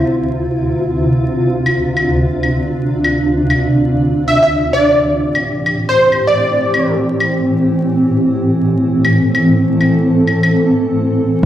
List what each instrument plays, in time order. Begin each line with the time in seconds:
Already playing: ambient pad D2 C3 E4 F4
0.36 ambient pad D4
1.66 claves
1.97 claves
2.43 claves
3.04 claves
3.50 claves
4.04 ambient pad A2 E3 C4 G4
4.28 digital synth lead E5
4.43 digital synth lead E5
4.73 digital synth lead D5
5.35 claves
5.66 claves
5.89 digital synth lead C5
6.12 claves
6.27 digital synth lead D5
6.74 claves
7.20 claves
7.74 ambient pad A4
9.05 claves
9.35 claves
9.81 claves
10.27 claves
10.43 claves